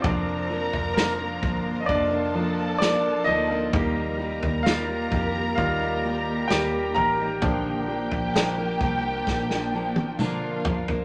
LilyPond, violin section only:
\new Staff \with { instrumentName = "Violin section" } { \time 4/4 \key bes \major \tempo 4 = 65 <bes' bes''>2 <a' a''>2 | <bes' bes''>1 | <g' g''>2. <f' f''>4 | }